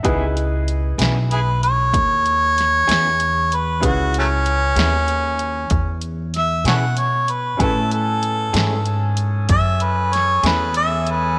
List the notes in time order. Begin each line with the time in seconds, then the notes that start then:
0.03 C#2 C#3 B3 D#4 E4 G#4 B4, kick, closed hi-hat
0.37 closed hi-hat
0.68 closed hi-hat
0.98 B1 C#3 B3 E4 G#4, snare, closed hi-hat
1.31 E4 G#4 B4, closed hi-hat
1.63 C#5, closed hi-hat
1.93 D#2, kick, closed hi-hat
2.26 closed hi-hat
2.58 snare, closed hi-hat
2.88 E2 C#3 B3 E4 G#4, snare, closed hi-hat
3.20 closed hi-hat
3.52 B4, closed hi-hat
3.80 C#2 C#4 E4 G#4 B4, kick, closed hi-hat
3.85 F#4
4.14 closed hi-hat
4.19 F#3 A3 C#4
4.46 closed hi-hat
4.76 D#2 C#3 B3 E4 G#4, snare, closed hi-hat
5.08 closed hi-hat
5.39 closed hi-hat
5.70 E2, kick, closed hi-hat
6.01 closed hi-hat
6.34 E5, snare, closed hi-hat
6.64 B2 C#3 B3 E4 G#4 A4 C#5 F#5, snare, closed hi-hat
6.97 C#5, closed hi-hat
7.28 B4, closed hi-hat
7.57 A2 A3 C#4 E4 G#4 A4 B4 G#5, kick, closed hi-hat
7.62 G#4 A4
7.91 A4, closed hi-hat
8.23 closed hi-hat
8.53 G#2 A3 C#4 E4 G#4, snare, closed hi-hat
8.86 closed hi-hat
9.17 closed hi-hat
9.49 F#2 E5, kick, closed hi-hat
9.80 B4, closed hi-hat
10.13 C#5, snare, closed hi-hat
10.43 E2 A3 C#4 E4 G#4 B4, snare, closed hi-hat
10.74 E5, closed hi-hat
11.07 closed hi-hat
11.11 B4